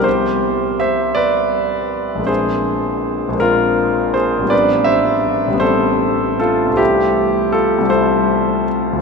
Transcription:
X:1
M:6/8
L:1/8
Q:3/8=53
K:C
V:1 name="Grand piano"
[Gc]2 [ce] [Bd]3 | [_Ac]3 [F_B]2 [Ac] | [Bd] [ce]2 [Ac]2 [FA] | [EG]2 [FA] [Ac]2 z |]
V:2 name="Grand piano"
[C,,G,B,CE]6 | [_B,,,_A,_B,CD]3 [B,,,A,B,CD]3 | [A,,,G,B,CD]3 [A,,,G,B,CD]3 | [C,,G,A,C]3 [C,,G,A,CE]3 |]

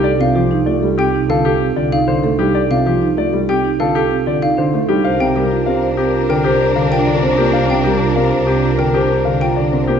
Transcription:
X:1
M:4/4
L:1/16
Q:1/4=96
K:Cdor
V:1 name="Xylophone"
z f z4 g z f z3 f z3 | z f z4 g z f z3 f z3 | z g z6 g z3 g z3 | z g z6 g z3 g z3 |]
V:2 name="Grand piano"
d z G z d z G z A G z d z c z G | d z G z d z G z A G z d z c z G | f z G z f z G z B G z f z d z G | f z G z f z G z B G z f z d z G |]
V:3 name="String section"
z16 | z16 | [DB]16- | [DB]12- [DB]3 z |]
V:4 name="Marimba"
A F G E F A C E F A C F E D A E | A F G E F A C E F A C F E D A E | c G B F G c C F z c z G F D c F | c G B F G c C F z c z G F D c F |]
V:5 name="Grand piano" clef=bass
z C, F, z A, G, z2 D, z2 D, z D, A, G, | z C, F, z A, G, z2 D, z2 D, z D, A, G, | z C, G, z C z3 D, z2 D, z D, C B, | z C, G, z C z3 D, z2 D, z D, C B, |]
V:6 name="Double bass" clef=bass
C,,16- | C,,16 | C,,16- | C,,16 |]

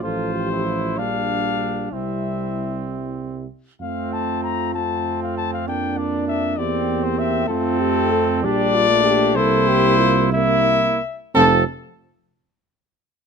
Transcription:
X:1
M:6/8
L:1/16
Q:3/8=64
K:F
V:1 name="Cornet"
c6 f6 | e8- e2 z2 | f2 a2 b2 a3 f a f | g2 d2 e2 d3 c e2 |
A6 d6 | c6 e6 | a2 z8 z2 |]
V:2 name="French horn"
A2 G2 F2 D6 | E8- E z3 | F12 | D6 G6 |
F2 G2 A2 G2 F2 G2 | A2 G2 F2 E3 z3 | C2 z8 z2 |]
V:3 name="Flugelhorn"
F3 E3 D6 | C8- C2 z2 | C6 C6 | D6 C6 |
C6 D6 | E6 E4 z2 | A2 z8 z2 |]
V:4 name="Trombone"
F,6 G,6 | G,8- G,2 z2 | A,6 A,6 | B,6 B,6 |
A,6 G,3 A,3 | B,6 B,4 z2 | F,2 z8 z2 |]
V:5 name="Tuba" clef=bass
A,,,6 B,,,6 | C,,8- C,,2 z2 | F,,12- | F,,6 E,,6 |
F,,6 B,,,6 | C,,8- C,,2 z2 | F,,,2 z8 z2 |]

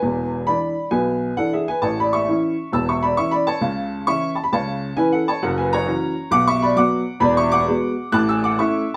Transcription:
X:1
M:4/4
L:1/16
Q:"Swing" 1/4=134
K:A
V:1 name="Upright piano"
[Bg]4 [db]4 [Bg]4 (3[Af]2 [Ge]2 [Bg]2 | (3[ca]2 [db]2 [ec']2- [ec']4 (3[ae']2 [ec']2 [db]2 (3[ec']2 [db]2 [ca]2- | [ca]4 [ec']2 a b [ca]4 (3[Bg]2 [Af]2 [ca]2 | (3[^Af]2 [Bg]2 [c^a]2- [ca]4 (3[fd']2 [ec']2 [db]2 [fd']4 |
(3[db]2 [ec']2 [fd']2- [fd']4 (3[af']2 [ge']2 [fd']2 [ec']3 z |]
V:2 name="Upright piano" clef=bass
[E,,,E,,]4 [E,DE]4 [B,,,B,,]4 [E,DE]4 | [A,,,A,,]4 [E,CE]4 [E,,,E,,]4 [E,CE]4 | [C,,C,]4 [E,CE]4 [C,,C,]4 [E,CE]4 | [F,,,F,,]4 [E,CF]4 [B,,,B,,]4 [F,B,F]4 |
[E,,,E,,]4 [G,B,F]4 [A,,,A,,]4 [A,CE]4 |]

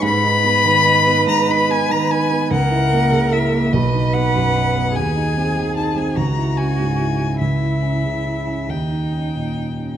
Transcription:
X:1
M:6/8
L:1/16
Q:3/8=49
K:G#m
V:1 name="Violin"
b6 a b g a g2 | f4 e2 d2 f4 | g4 =a g ^a2 g4 | e6 =g6 |]
V:2 name="Cello"
B12 | A6 B6 | G6 F6 | E6 D6 |]
V:3 name="Grand piano"
G,, D B, D, D B, G,, D B, D, D B, | C,, E A, C, E A, B,,, D B, F,, D B, | D,, D ^B, D, D B, C,, E C G,, E C | C,, E C C, E C D,, D C A,, D C |]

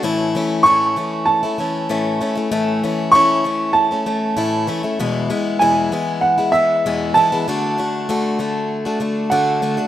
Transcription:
X:1
M:4/4
L:1/16
Q:1/4=97
K:A
V:1 name="Grand piano"
z4 c'4 a8 | z4 c'4 a8 | z4 g4 f2 e4 a2- | a12 f4 |]
V:2 name="Steel-string acoustic guitar"
[A,,E,A,CE]2 [E,A,CE]2 [A,,E,A,CE]2 [E,A,CE]3 [A,CE] [E,A,CE]2 [A,,E,A,CE]2 [E,A,CE] [A,CE] | [A,,E,A,CE]2 [E,A,CE]2 [A,,E,A,CE]2 [E,A,CE]3 [A,CE] [E,A,CE]2 [A,,E,A,CE]2 [E,A,CE] [A,CE] | [E,,B,,E,G,B,E]2 [E,G,B,E]2 [E,,B,,E,G,B,E]2 [E,G,B,E]3 [E,G,B,E] [E,G,B,E]2 [E,,B,,E,G,B,E]2 [E,G,B,E] [E,G,B,E] | [D,A,DF]2 [D,A,DF]2 [D,A,DF]2 [D,A,DF]3 [A,DF] [D,A,DF]2 [D,A,DF]2 [D,A,DF] [A,DF] |]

